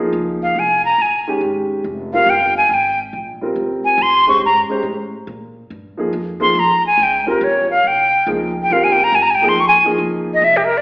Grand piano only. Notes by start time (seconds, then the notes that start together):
0.00 F3 A#3 D#4 G#4
1.27 D#3 G#3 C#4 G4
2.13 G3 C4 F4 A#4
3.41 G3 C4 F4 A#4
4.27 G#3 C#4 G4 C5
4.70 G#3 C#4 G4 C5
5.97 F3 A#3 D#4 G#4
6.40 F3 A#3 D#4 G#4
7.26 G3 C4 F4 A#4
8.27 F3 A#3 D#4 G#4
8.71 G3 C4 F4 A#4
9.42 F3 A#3 D#4 G#4
9.84 F3 A#3 D#4 G#4